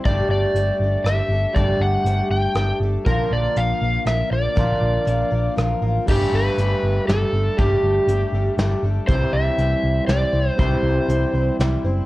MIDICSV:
0, 0, Header, 1, 6, 480
1, 0, Start_track
1, 0, Tempo, 502092
1, 48, Time_signature, 3, 2, 24, 8
1, 11527, End_track
2, 0, Start_track
2, 0, Title_t, "Electric slide guitar"
2, 0, Program_c, 0, 29
2, 55, Note_on_c, 0, 74, 73
2, 275, Note_off_c, 0, 74, 0
2, 297, Note_on_c, 0, 74, 66
2, 999, Note_on_c, 0, 76, 73
2, 1035, Note_off_c, 0, 74, 0
2, 1477, Note_on_c, 0, 74, 81
2, 1499, Note_off_c, 0, 76, 0
2, 1731, Note_off_c, 0, 74, 0
2, 1733, Note_on_c, 0, 78, 83
2, 2204, Note_off_c, 0, 78, 0
2, 2208, Note_on_c, 0, 79, 84
2, 2656, Note_off_c, 0, 79, 0
2, 2930, Note_on_c, 0, 70, 83
2, 3178, Note_off_c, 0, 70, 0
2, 3180, Note_on_c, 0, 74, 78
2, 3414, Note_on_c, 0, 77, 92
2, 3423, Note_off_c, 0, 74, 0
2, 3890, Note_off_c, 0, 77, 0
2, 3894, Note_on_c, 0, 76, 78
2, 4133, Note_off_c, 0, 76, 0
2, 4137, Note_on_c, 0, 74, 76
2, 5295, Note_off_c, 0, 74, 0
2, 5839, Note_on_c, 0, 67, 81
2, 6068, Note_on_c, 0, 71, 89
2, 6071, Note_off_c, 0, 67, 0
2, 6764, Note_off_c, 0, 71, 0
2, 6768, Note_on_c, 0, 69, 76
2, 7247, Note_on_c, 0, 67, 72
2, 7263, Note_off_c, 0, 69, 0
2, 8169, Note_off_c, 0, 67, 0
2, 8676, Note_on_c, 0, 72, 90
2, 8920, Note_on_c, 0, 76, 94
2, 8929, Note_off_c, 0, 72, 0
2, 9626, Note_off_c, 0, 76, 0
2, 9630, Note_on_c, 0, 74, 85
2, 10031, Note_off_c, 0, 74, 0
2, 10031, Note_on_c, 0, 72, 85
2, 10127, Note_off_c, 0, 72, 0
2, 10127, Note_on_c, 0, 72, 77
2, 11048, Note_off_c, 0, 72, 0
2, 11527, End_track
3, 0, Start_track
3, 0, Title_t, "Twelve-string acoustic guitar"
3, 0, Program_c, 1, 25
3, 72, Note_on_c, 1, 43, 61
3, 78, Note_on_c, 1, 55, 65
3, 80, Note_on_c, 1, 50, 59
3, 82, Note_on_c, 1, 69, 65
3, 83, Note_on_c, 1, 62, 61
3, 88, Note_on_c, 1, 67, 72
3, 537, Note_off_c, 1, 55, 0
3, 541, Note_off_c, 1, 43, 0
3, 544, Note_off_c, 1, 50, 0
3, 545, Note_off_c, 1, 69, 0
3, 548, Note_off_c, 1, 67, 0
3, 548, Note_on_c, 1, 55, 49
3, 555, Note_off_c, 1, 62, 0
3, 559, Note_on_c, 1, 62, 55
3, 563, Note_on_c, 1, 67, 55
3, 570, Note_on_c, 1, 69, 57
3, 779, Note_off_c, 1, 55, 0
3, 784, Note_off_c, 1, 62, 0
3, 786, Note_off_c, 1, 67, 0
3, 789, Note_off_c, 1, 69, 0
3, 799, Note_on_c, 1, 69, 44
3, 801, Note_on_c, 1, 67, 42
3, 816, Note_on_c, 1, 62, 36
3, 818, Note_on_c, 1, 55, 36
3, 1024, Note_off_c, 1, 69, 0
3, 1025, Note_off_c, 1, 67, 0
3, 1032, Note_off_c, 1, 55, 0
3, 1033, Note_off_c, 1, 62, 0
3, 1043, Note_on_c, 1, 55, 56
3, 1047, Note_on_c, 1, 62, 57
3, 1053, Note_on_c, 1, 67, 52
3, 1060, Note_on_c, 1, 69, 56
3, 1258, Note_off_c, 1, 69, 0
3, 1259, Note_off_c, 1, 67, 0
3, 1267, Note_off_c, 1, 55, 0
3, 1269, Note_off_c, 1, 62, 0
3, 1270, Note_on_c, 1, 69, 43
3, 1271, Note_on_c, 1, 67, 41
3, 1280, Note_on_c, 1, 62, 40
3, 1285, Note_on_c, 1, 55, 35
3, 1492, Note_off_c, 1, 62, 0
3, 1492, Note_off_c, 1, 67, 0
3, 1494, Note_off_c, 1, 69, 0
3, 1495, Note_on_c, 1, 50, 65
3, 1497, Note_off_c, 1, 55, 0
3, 1501, Note_on_c, 1, 43, 63
3, 1503, Note_on_c, 1, 62, 69
3, 1503, Note_on_c, 1, 67, 68
3, 1506, Note_on_c, 1, 69, 73
3, 1508, Note_on_c, 1, 55, 61
3, 1970, Note_off_c, 1, 55, 0
3, 1973, Note_off_c, 1, 50, 0
3, 1976, Note_off_c, 1, 43, 0
3, 1977, Note_off_c, 1, 67, 0
3, 1978, Note_off_c, 1, 69, 0
3, 1981, Note_on_c, 1, 55, 49
3, 1985, Note_off_c, 1, 62, 0
3, 1988, Note_on_c, 1, 67, 55
3, 1989, Note_on_c, 1, 62, 56
3, 2001, Note_on_c, 1, 69, 57
3, 2441, Note_off_c, 1, 55, 0
3, 2452, Note_off_c, 1, 67, 0
3, 2453, Note_on_c, 1, 55, 56
3, 2454, Note_off_c, 1, 69, 0
3, 2457, Note_off_c, 1, 62, 0
3, 2461, Note_on_c, 1, 62, 53
3, 2464, Note_on_c, 1, 67, 59
3, 2465, Note_on_c, 1, 69, 57
3, 2689, Note_off_c, 1, 69, 0
3, 2692, Note_off_c, 1, 55, 0
3, 2692, Note_off_c, 1, 67, 0
3, 2696, Note_off_c, 1, 62, 0
3, 2701, Note_on_c, 1, 69, 44
3, 2703, Note_on_c, 1, 67, 41
3, 2707, Note_on_c, 1, 62, 40
3, 2714, Note_on_c, 1, 55, 38
3, 2928, Note_off_c, 1, 67, 0
3, 2929, Note_off_c, 1, 55, 0
3, 2929, Note_off_c, 1, 62, 0
3, 2930, Note_on_c, 1, 46, 66
3, 2932, Note_on_c, 1, 65, 64
3, 2933, Note_on_c, 1, 50, 62
3, 2933, Note_on_c, 1, 53, 62
3, 2933, Note_on_c, 1, 58, 72
3, 2936, Note_off_c, 1, 69, 0
3, 2942, Note_on_c, 1, 70, 73
3, 3392, Note_off_c, 1, 53, 0
3, 3404, Note_on_c, 1, 53, 51
3, 3405, Note_off_c, 1, 65, 0
3, 3406, Note_off_c, 1, 58, 0
3, 3408, Note_off_c, 1, 70, 0
3, 3411, Note_off_c, 1, 46, 0
3, 3412, Note_off_c, 1, 50, 0
3, 3416, Note_on_c, 1, 65, 54
3, 3417, Note_on_c, 1, 58, 54
3, 3419, Note_on_c, 1, 70, 59
3, 3637, Note_off_c, 1, 70, 0
3, 3644, Note_off_c, 1, 58, 0
3, 3645, Note_off_c, 1, 65, 0
3, 3647, Note_off_c, 1, 53, 0
3, 3649, Note_on_c, 1, 70, 45
3, 3655, Note_on_c, 1, 58, 40
3, 3657, Note_on_c, 1, 65, 41
3, 3666, Note_on_c, 1, 53, 39
3, 3860, Note_off_c, 1, 58, 0
3, 3863, Note_off_c, 1, 53, 0
3, 3872, Note_on_c, 1, 58, 53
3, 3874, Note_off_c, 1, 65, 0
3, 3875, Note_on_c, 1, 53, 46
3, 3877, Note_off_c, 1, 70, 0
3, 3885, Note_on_c, 1, 65, 53
3, 3889, Note_on_c, 1, 70, 61
3, 4111, Note_off_c, 1, 70, 0
3, 4121, Note_off_c, 1, 58, 0
3, 4123, Note_off_c, 1, 53, 0
3, 4123, Note_off_c, 1, 65, 0
3, 4123, Note_on_c, 1, 70, 45
3, 4134, Note_on_c, 1, 65, 40
3, 4141, Note_on_c, 1, 58, 42
3, 4149, Note_on_c, 1, 53, 35
3, 4346, Note_off_c, 1, 53, 0
3, 4346, Note_off_c, 1, 58, 0
3, 4350, Note_off_c, 1, 65, 0
3, 4353, Note_on_c, 1, 46, 67
3, 4355, Note_off_c, 1, 70, 0
3, 4356, Note_on_c, 1, 50, 67
3, 4358, Note_on_c, 1, 53, 65
3, 4358, Note_on_c, 1, 58, 72
3, 4362, Note_on_c, 1, 65, 69
3, 4367, Note_on_c, 1, 70, 75
3, 4816, Note_off_c, 1, 53, 0
3, 4820, Note_off_c, 1, 58, 0
3, 4827, Note_on_c, 1, 53, 63
3, 4830, Note_off_c, 1, 65, 0
3, 4831, Note_on_c, 1, 58, 61
3, 4836, Note_off_c, 1, 70, 0
3, 4842, Note_off_c, 1, 46, 0
3, 4842, Note_on_c, 1, 65, 62
3, 4843, Note_off_c, 1, 50, 0
3, 4848, Note_on_c, 1, 70, 67
3, 5062, Note_off_c, 1, 70, 0
3, 5071, Note_off_c, 1, 65, 0
3, 5073, Note_on_c, 1, 70, 49
3, 5076, Note_off_c, 1, 58, 0
3, 5079, Note_off_c, 1, 53, 0
3, 5082, Note_on_c, 1, 65, 44
3, 5087, Note_on_c, 1, 58, 42
3, 5097, Note_on_c, 1, 53, 41
3, 5302, Note_off_c, 1, 53, 0
3, 5308, Note_off_c, 1, 58, 0
3, 5314, Note_on_c, 1, 53, 58
3, 5318, Note_off_c, 1, 70, 0
3, 5320, Note_on_c, 1, 58, 58
3, 5321, Note_off_c, 1, 65, 0
3, 5329, Note_on_c, 1, 70, 71
3, 5333, Note_on_c, 1, 65, 59
3, 5549, Note_off_c, 1, 70, 0
3, 5554, Note_off_c, 1, 65, 0
3, 5558, Note_off_c, 1, 58, 0
3, 5560, Note_on_c, 1, 70, 48
3, 5562, Note_off_c, 1, 53, 0
3, 5566, Note_on_c, 1, 65, 44
3, 5569, Note_on_c, 1, 58, 41
3, 5578, Note_on_c, 1, 53, 39
3, 5800, Note_off_c, 1, 53, 0
3, 5801, Note_on_c, 1, 43, 60
3, 5803, Note_on_c, 1, 50, 65
3, 5804, Note_on_c, 1, 55, 63
3, 5805, Note_off_c, 1, 70, 0
3, 5806, Note_off_c, 1, 58, 0
3, 5808, Note_off_c, 1, 65, 0
3, 5809, Note_on_c, 1, 69, 73
3, 5810, Note_on_c, 1, 62, 73
3, 5815, Note_on_c, 1, 67, 72
3, 6285, Note_off_c, 1, 43, 0
3, 6285, Note_off_c, 1, 62, 0
3, 6286, Note_off_c, 1, 50, 0
3, 6286, Note_off_c, 1, 55, 0
3, 6290, Note_off_c, 1, 69, 0
3, 6290, Note_on_c, 1, 55, 52
3, 6292, Note_off_c, 1, 67, 0
3, 6296, Note_on_c, 1, 62, 57
3, 6296, Note_on_c, 1, 67, 57
3, 6309, Note_on_c, 1, 69, 61
3, 6761, Note_off_c, 1, 55, 0
3, 6764, Note_off_c, 1, 62, 0
3, 6765, Note_on_c, 1, 55, 54
3, 6768, Note_off_c, 1, 69, 0
3, 6773, Note_off_c, 1, 67, 0
3, 6776, Note_on_c, 1, 62, 49
3, 6777, Note_on_c, 1, 67, 55
3, 6779, Note_on_c, 1, 69, 61
3, 6998, Note_off_c, 1, 67, 0
3, 6999, Note_off_c, 1, 69, 0
3, 7007, Note_off_c, 1, 55, 0
3, 7008, Note_off_c, 1, 62, 0
3, 7009, Note_on_c, 1, 67, 43
3, 7011, Note_on_c, 1, 69, 47
3, 7019, Note_on_c, 1, 62, 41
3, 7027, Note_on_c, 1, 55, 39
3, 7249, Note_off_c, 1, 67, 0
3, 7250, Note_off_c, 1, 69, 0
3, 7254, Note_off_c, 1, 55, 0
3, 7254, Note_off_c, 1, 62, 0
3, 7261, Note_on_c, 1, 50, 60
3, 7265, Note_on_c, 1, 55, 72
3, 7267, Note_on_c, 1, 43, 61
3, 7269, Note_on_c, 1, 67, 66
3, 7270, Note_on_c, 1, 62, 74
3, 7274, Note_on_c, 1, 69, 66
3, 7728, Note_off_c, 1, 62, 0
3, 7731, Note_off_c, 1, 55, 0
3, 7735, Note_off_c, 1, 50, 0
3, 7735, Note_on_c, 1, 55, 56
3, 7738, Note_off_c, 1, 43, 0
3, 7739, Note_on_c, 1, 62, 62
3, 7741, Note_off_c, 1, 69, 0
3, 7744, Note_off_c, 1, 67, 0
3, 7748, Note_on_c, 1, 67, 61
3, 7752, Note_on_c, 1, 69, 58
3, 7962, Note_off_c, 1, 69, 0
3, 7970, Note_off_c, 1, 67, 0
3, 7972, Note_off_c, 1, 55, 0
3, 7974, Note_off_c, 1, 62, 0
3, 7974, Note_on_c, 1, 69, 47
3, 7982, Note_on_c, 1, 67, 49
3, 7990, Note_on_c, 1, 62, 44
3, 7991, Note_on_c, 1, 55, 37
3, 8202, Note_off_c, 1, 55, 0
3, 8202, Note_off_c, 1, 62, 0
3, 8211, Note_off_c, 1, 67, 0
3, 8211, Note_off_c, 1, 69, 0
3, 8213, Note_on_c, 1, 62, 57
3, 8214, Note_on_c, 1, 55, 55
3, 8222, Note_on_c, 1, 67, 68
3, 8223, Note_on_c, 1, 69, 65
3, 8440, Note_off_c, 1, 69, 0
3, 8444, Note_off_c, 1, 67, 0
3, 8451, Note_off_c, 1, 55, 0
3, 8451, Note_off_c, 1, 62, 0
3, 8451, Note_on_c, 1, 69, 51
3, 8455, Note_on_c, 1, 67, 47
3, 8463, Note_on_c, 1, 62, 43
3, 8467, Note_on_c, 1, 55, 38
3, 8678, Note_off_c, 1, 55, 0
3, 8687, Note_off_c, 1, 62, 0
3, 8689, Note_on_c, 1, 55, 69
3, 8690, Note_off_c, 1, 69, 0
3, 8690, Note_on_c, 1, 48, 65
3, 8691, Note_on_c, 1, 60, 70
3, 8692, Note_off_c, 1, 67, 0
3, 8697, Note_on_c, 1, 64, 70
3, 8698, Note_on_c, 1, 72, 67
3, 9158, Note_off_c, 1, 64, 0
3, 9162, Note_off_c, 1, 55, 0
3, 9162, Note_off_c, 1, 60, 0
3, 9165, Note_off_c, 1, 72, 0
3, 9165, Note_on_c, 1, 55, 50
3, 9169, Note_off_c, 1, 48, 0
3, 9170, Note_on_c, 1, 64, 59
3, 9174, Note_on_c, 1, 60, 59
3, 9176, Note_on_c, 1, 72, 58
3, 9634, Note_off_c, 1, 60, 0
3, 9637, Note_off_c, 1, 55, 0
3, 9638, Note_off_c, 1, 64, 0
3, 9641, Note_on_c, 1, 55, 52
3, 9643, Note_off_c, 1, 72, 0
3, 9646, Note_on_c, 1, 60, 52
3, 9650, Note_on_c, 1, 64, 60
3, 9654, Note_on_c, 1, 72, 54
3, 9857, Note_off_c, 1, 72, 0
3, 9868, Note_on_c, 1, 72, 43
3, 9875, Note_off_c, 1, 64, 0
3, 9876, Note_off_c, 1, 60, 0
3, 9884, Note_off_c, 1, 55, 0
3, 9887, Note_on_c, 1, 64, 41
3, 9888, Note_on_c, 1, 60, 35
3, 10114, Note_off_c, 1, 64, 0
3, 10117, Note_off_c, 1, 60, 0
3, 10118, Note_off_c, 1, 72, 0
3, 10119, Note_on_c, 1, 55, 62
3, 10125, Note_on_c, 1, 48, 63
3, 10126, Note_on_c, 1, 64, 67
3, 10128, Note_on_c, 1, 60, 69
3, 10138, Note_on_c, 1, 72, 75
3, 10595, Note_off_c, 1, 55, 0
3, 10597, Note_off_c, 1, 60, 0
3, 10599, Note_on_c, 1, 55, 55
3, 10604, Note_off_c, 1, 64, 0
3, 10605, Note_off_c, 1, 72, 0
3, 10606, Note_off_c, 1, 48, 0
3, 10609, Note_on_c, 1, 60, 55
3, 10615, Note_on_c, 1, 64, 59
3, 10616, Note_on_c, 1, 72, 67
3, 10834, Note_off_c, 1, 72, 0
3, 10843, Note_off_c, 1, 55, 0
3, 10844, Note_off_c, 1, 64, 0
3, 10845, Note_on_c, 1, 72, 51
3, 10848, Note_off_c, 1, 60, 0
3, 10855, Note_on_c, 1, 64, 48
3, 10871, Note_on_c, 1, 60, 38
3, 11080, Note_off_c, 1, 60, 0
3, 11086, Note_off_c, 1, 72, 0
3, 11086, Note_on_c, 1, 55, 59
3, 11091, Note_off_c, 1, 64, 0
3, 11092, Note_on_c, 1, 60, 66
3, 11104, Note_on_c, 1, 64, 61
3, 11105, Note_on_c, 1, 72, 61
3, 11311, Note_off_c, 1, 72, 0
3, 11323, Note_off_c, 1, 64, 0
3, 11323, Note_on_c, 1, 72, 48
3, 11326, Note_off_c, 1, 55, 0
3, 11329, Note_off_c, 1, 60, 0
3, 11334, Note_on_c, 1, 64, 46
3, 11345, Note_on_c, 1, 60, 43
3, 11527, Note_off_c, 1, 60, 0
3, 11527, Note_off_c, 1, 64, 0
3, 11527, Note_off_c, 1, 72, 0
3, 11527, End_track
4, 0, Start_track
4, 0, Title_t, "Clean electric guitar"
4, 0, Program_c, 2, 27
4, 40, Note_on_c, 2, 55, 72
4, 51, Note_on_c, 2, 57, 86
4, 1454, Note_off_c, 2, 55, 0
4, 1465, Note_on_c, 2, 55, 79
4, 1472, Note_off_c, 2, 57, 0
4, 1483, Note_on_c, 2, 57, 84
4, 2904, Note_off_c, 2, 55, 0
4, 2913, Note_off_c, 2, 57, 0
4, 2935, Note_on_c, 2, 62, 79
4, 4377, Note_off_c, 2, 62, 0
4, 4381, Note_on_c, 2, 62, 80
4, 5801, Note_off_c, 2, 62, 0
4, 5811, Note_on_c, 2, 57, 83
4, 7235, Note_off_c, 2, 57, 0
4, 7249, Note_on_c, 2, 57, 80
4, 8674, Note_off_c, 2, 57, 0
4, 8688, Note_on_c, 2, 52, 83
4, 8715, Note_on_c, 2, 67, 95
4, 10106, Note_off_c, 2, 52, 0
4, 10118, Note_on_c, 2, 52, 78
4, 10136, Note_off_c, 2, 67, 0
4, 10140, Note_on_c, 2, 67, 96
4, 11527, Note_off_c, 2, 52, 0
4, 11527, Note_off_c, 2, 67, 0
4, 11527, End_track
5, 0, Start_track
5, 0, Title_t, "Picked electric bass"
5, 0, Program_c, 3, 34
5, 52, Note_on_c, 3, 31, 80
5, 197, Note_off_c, 3, 31, 0
5, 277, Note_on_c, 3, 31, 75
5, 427, Note_off_c, 3, 31, 0
5, 517, Note_on_c, 3, 31, 73
5, 667, Note_off_c, 3, 31, 0
5, 763, Note_on_c, 3, 31, 74
5, 911, Note_off_c, 3, 31, 0
5, 997, Note_on_c, 3, 31, 75
5, 1147, Note_off_c, 3, 31, 0
5, 1229, Note_on_c, 3, 31, 71
5, 1382, Note_off_c, 3, 31, 0
5, 1487, Note_on_c, 3, 31, 75
5, 1635, Note_off_c, 3, 31, 0
5, 1709, Note_on_c, 3, 31, 75
5, 1862, Note_off_c, 3, 31, 0
5, 1952, Note_on_c, 3, 31, 79
5, 2104, Note_off_c, 3, 31, 0
5, 2199, Note_on_c, 3, 31, 70
5, 2349, Note_off_c, 3, 31, 0
5, 2436, Note_on_c, 3, 31, 75
5, 2587, Note_off_c, 3, 31, 0
5, 2675, Note_on_c, 3, 31, 74
5, 2826, Note_off_c, 3, 31, 0
5, 2929, Note_on_c, 3, 34, 76
5, 3076, Note_off_c, 3, 34, 0
5, 3166, Note_on_c, 3, 34, 72
5, 3314, Note_off_c, 3, 34, 0
5, 3408, Note_on_c, 3, 34, 81
5, 3555, Note_off_c, 3, 34, 0
5, 3647, Note_on_c, 3, 34, 75
5, 3794, Note_off_c, 3, 34, 0
5, 3880, Note_on_c, 3, 34, 74
5, 4029, Note_off_c, 3, 34, 0
5, 4122, Note_on_c, 3, 34, 74
5, 4271, Note_off_c, 3, 34, 0
5, 4367, Note_on_c, 3, 34, 81
5, 4515, Note_off_c, 3, 34, 0
5, 4603, Note_on_c, 3, 34, 75
5, 4752, Note_off_c, 3, 34, 0
5, 4845, Note_on_c, 3, 34, 74
5, 4993, Note_off_c, 3, 34, 0
5, 5084, Note_on_c, 3, 34, 71
5, 5232, Note_off_c, 3, 34, 0
5, 5327, Note_on_c, 3, 34, 72
5, 5474, Note_off_c, 3, 34, 0
5, 5562, Note_on_c, 3, 33, 69
5, 5711, Note_off_c, 3, 33, 0
5, 5811, Note_on_c, 3, 31, 74
5, 5957, Note_off_c, 3, 31, 0
5, 6048, Note_on_c, 3, 31, 73
5, 6195, Note_off_c, 3, 31, 0
5, 6290, Note_on_c, 3, 31, 77
5, 6436, Note_off_c, 3, 31, 0
5, 6530, Note_on_c, 3, 31, 75
5, 6676, Note_off_c, 3, 31, 0
5, 6770, Note_on_c, 3, 31, 76
5, 6916, Note_off_c, 3, 31, 0
5, 7003, Note_on_c, 3, 31, 74
5, 7152, Note_off_c, 3, 31, 0
5, 7250, Note_on_c, 3, 31, 84
5, 7396, Note_off_c, 3, 31, 0
5, 7481, Note_on_c, 3, 31, 77
5, 7630, Note_off_c, 3, 31, 0
5, 7718, Note_on_c, 3, 31, 82
5, 7867, Note_off_c, 3, 31, 0
5, 7958, Note_on_c, 3, 31, 72
5, 8107, Note_off_c, 3, 31, 0
5, 8196, Note_on_c, 3, 31, 78
5, 8346, Note_off_c, 3, 31, 0
5, 8440, Note_on_c, 3, 31, 74
5, 8589, Note_off_c, 3, 31, 0
5, 8690, Note_on_c, 3, 36, 86
5, 8835, Note_off_c, 3, 36, 0
5, 8918, Note_on_c, 3, 36, 79
5, 9067, Note_off_c, 3, 36, 0
5, 9161, Note_on_c, 3, 36, 79
5, 9309, Note_off_c, 3, 36, 0
5, 9403, Note_on_c, 3, 36, 74
5, 9551, Note_off_c, 3, 36, 0
5, 9636, Note_on_c, 3, 36, 78
5, 9786, Note_off_c, 3, 36, 0
5, 9876, Note_on_c, 3, 36, 81
5, 10026, Note_off_c, 3, 36, 0
5, 10126, Note_on_c, 3, 36, 81
5, 10273, Note_off_c, 3, 36, 0
5, 10351, Note_on_c, 3, 36, 82
5, 10502, Note_off_c, 3, 36, 0
5, 10597, Note_on_c, 3, 36, 77
5, 10746, Note_off_c, 3, 36, 0
5, 10836, Note_on_c, 3, 36, 74
5, 10986, Note_off_c, 3, 36, 0
5, 11082, Note_on_c, 3, 36, 77
5, 11229, Note_off_c, 3, 36, 0
5, 11318, Note_on_c, 3, 30, 73
5, 11467, Note_off_c, 3, 30, 0
5, 11527, End_track
6, 0, Start_track
6, 0, Title_t, "Drums"
6, 50, Note_on_c, 9, 42, 56
6, 53, Note_on_c, 9, 36, 97
6, 146, Note_off_c, 9, 42, 0
6, 148, Note_off_c, 9, 36, 0
6, 533, Note_on_c, 9, 42, 58
6, 629, Note_off_c, 9, 42, 0
6, 1012, Note_on_c, 9, 42, 51
6, 1018, Note_on_c, 9, 37, 68
6, 1108, Note_off_c, 9, 42, 0
6, 1113, Note_off_c, 9, 37, 0
6, 1489, Note_on_c, 9, 42, 53
6, 1490, Note_on_c, 9, 36, 95
6, 1585, Note_off_c, 9, 42, 0
6, 1586, Note_off_c, 9, 36, 0
6, 1967, Note_on_c, 9, 42, 51
6, 2063, Note_off_c, 9, 42, 0
6, 2437, Note_on_c, 9, 42, 49
6, 2443, Note_on_c, 9, 37, 74
6, 2533, Note_off_c, 9, 42, 0
6, 2539, Note_off_c, 9, 37, 0
6, 2926, Note_on_c, 9, 42, 52
6, 2928, Note_on_c, 9, 36, 95
6, 3022, Note_off_c, 9, 42, 0
6, 3024, Note_off_c, 9, 36, 0
6, 3407, Note_on_c, 9, 42, 53
6, 3502, Note_off_c, 9, 42, 0
6, 3887, Note_on_c, 9, 42, 51
6, 3893, Note_on_c, 9, 37, 68
6, 3983, Note_off_c, 9, 42, 0
6, 3989, Note_off_c, 9, 37, 0
6, 4367, Note_on_c, 9, 42, 56
6, 4370, Note_on_c, 9, 36, 99
6, 4463, Note_off_c, 9, 42, 0
6, 4466, Note_off_c, 9, 36, 0
6, 4848, Note_on_c, 9, 42, 54
6, 4944, Note_off_c, 9, 42, 0
6, 5332, Note_on_c, 9, 42, 54
6, 5338, Note_on_c, 9, 37, 74
6, 5427, Note_off_c, 9, 42, 0
6, 5433, Note_off_c, 9, 37, 0
6, 5811, Note_on_c, 9, 49, 82
6, 5814, Note_on_c, 9, 36, 92
6, 5907, Note_off_c, 9, 49, 0
6, 5909, Note_off_c, 9, 36, 0
6, 6294, Note_on_c, 9, 42, 54
6, 6389, Note_off_c, 9, 42, 0
6, 6777, Note_on_c, 9, 42, 50
6, 6782, Note_on_c, 9, 38, 72
6, 6872, Note_off_c, 9, 42, 0
6, 6878, Note_off_c, 9, 38, 0
6, 7249, Note_on_c, 9, 42, 56
6, 7252, Note_on_c, 9, 36, 97
6, 7345, Note_off_c, 9, 42, 0
6, 7348, Note_off_c, 9, 36, 0
6, 7728, Note_on_c, 9, 42, 57
6, 7824, Note_off_c, 9, 42, 0
6, 8206, Note_on_c, 9, 42, 55
6, 8212, Note_on_c, 9, 38, 72
6, 8302, Note_off_c, 9, 42, 0
6, 8307, Note_off_c, 9, 38, 0
6, 8685, Note_on_c, 9, 42, 58
6, 8688, Note_on_c, 9, 36, 100
6, 8781, Note_off_c, 9, 42, 0
6, 8783, Note_off_c, 9, 36, 0
6, 9165, Note_on_c, 9, 42, 56
6, 9260, Note_off_c, 9, 42, 0
6, 9643, Note_on_c, 9, 42, 54
6, 9648, Note_on_c, 9, 38, 71
6, 9738, Note_off_c, 9, 42, 0
6, 9744, Note_off_c, 9, 38, 0
6, 10125, Note_on_c, 9, 36, 98
6, 10126, Note_on_c, 9, 42, 56
6, 10221, Note_off_c, 9, 36, 0
6, 10222, Note_off_c, 9, 42, 0
6, 10607, Note_on_c, 9, 42, 55
6, 10702, Note_off_c, 9, 42, 0
6, 11090, Note_on_c, 9, 42, 53
6, 11096, Note_on_c, 9, 38, 74
6, 11186, Note_off_c, 9, 42, 0
6, 11191, Note_off_c, 9, 38, 0
6, 11527, End_track
0, 0, End_of_file